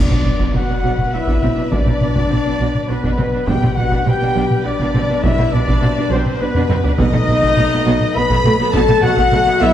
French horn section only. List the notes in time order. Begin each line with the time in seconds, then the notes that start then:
Already playing: D4
0.54 F#4
1.14 E4
1.71 D4
2.89 B3
3.47 G4
3.75 F#4
4.04 G4
4.64 D4
5.23 E4
5.51 D4
6.13 C4
6.39 B3
7.00 D#4
8.15 B4
8.72 A4
9.02 F#4
9.60 E4